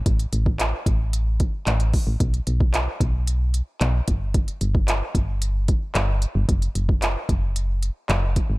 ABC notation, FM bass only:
X:1
M:4/4
L:1/16
Q:1/4=112
K:Glyd
V:1 name="FM bass" clef=bass
A,,,2 A,,,4 A,,,6 A,,,3 A,,, | B,,,2 B,,,4 B,,,6 B,,,2 G,,,2- | G,,,2 G,,,4 G,,,6 G,,,3 G,,, | F,,,2 F,,,4 F,,,6 F,,,3 ^G,,, |]